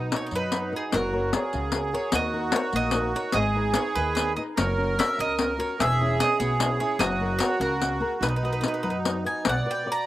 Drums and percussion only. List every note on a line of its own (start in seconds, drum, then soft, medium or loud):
0.12 riq medium
0.31 riq soft
0.52 riq medium
0.92 riq medium
1.33 riq medium
1.53 riq soft
1.72 riq medium
2.12 riq medium
2.52 riq medium
2.73 riq soft
2.91 riq medium
3.32 riq medium
3.74 riq medium
3.95 riq soft
4.17 riq medium
4.58 riq medium
5.00 riq medium
5.19 riq soft
5.39 riq medium
5.80 riq medium
6.20 riq medium
6.41 riq soft
6.60 riq medium
7.00 riq medium
7.40 riq medium
7.62 riq soft
7.81 riq soft
8.23 riq medium
8.63 riq medium
9.05 riq medium
9.45 riq medium